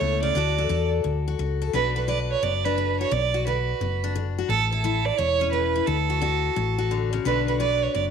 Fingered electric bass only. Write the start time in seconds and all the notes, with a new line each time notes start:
0.01 C#2
0.35 D2
0.70 E2
1.05 D2
1.39 C#2
1.74 B1
2.43 F#1
3.12 B1
3.81 F#1
4.49 A1
5.19 E1
5.87 D2
6.57 A1
7.26 B1
7.95 F#1